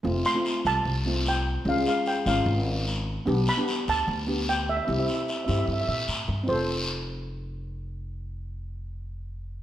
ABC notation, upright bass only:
X:1
M:4/4
L:1/8
Q:1/4=150
K:F
V:1 name="Upright bass" clef=bass
F,,, z2 C,, C,,4 | _D,, z2 _A,,, A,,,4 | =B,,, z2 D,, D,,4 | C,, z2 G,, G,, B,, A,, G,, |
F,,,8- | F,,,8 |]